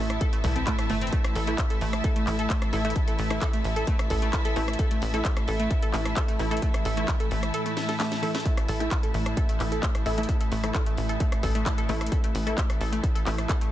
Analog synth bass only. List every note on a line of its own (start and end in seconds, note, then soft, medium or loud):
0.00 0.18 A1 medium
0.44 0.63 C2 loud
0.90 1.09 G1 medium
1.36 1.55 A1 loud
1.81 2.01 A1 loud
2.27 2.47 A1 loud
2.73 2.93 A1 medium
3.19 3.38 A1 loud
3.64 3.84 A1 medium
4.10 4.30 A1 medium
4.56 4.76 A1 loud
5.02 5.21 A1 loud
5.48 5.67 A1 loud
5.94 6.13 A1 loud
6.39 6.59 A1 medium
6.85 7.05 A1 loud
7.31 7.50 A1 medium
8.69 8.88 A1 loud
9.14 9.34 A1 loud
9.60 9.80 A1 loud
10.06 10.25 A1 medium
10.52 10.71 A1 loud
10.97 11.17 A1 medium
11.43 11.63 A1 medium
11.89 12.09 A1 loud
12.35 12.54 A1 loud
12.81 13.00 A1 loud
13.26 13.46 A1 loud